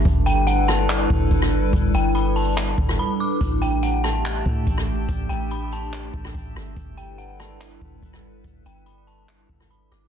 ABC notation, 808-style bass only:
X:1
M:4/4
L:1/8
Q:1/4=143
K:G
V:1 name="808-style bass" clef=bass
G,,,4- G,,, G,,, G,,,2 | G,,, G,,,4 G,,, z2 | A,,,4- A,,, A,, A,,,2 | A,,, A,,,4 A,,, A,,, G,,, |
G,,,4- G,,, G,,, G,,,2 | G,,, G,,,4 G,,,2 G,,, |]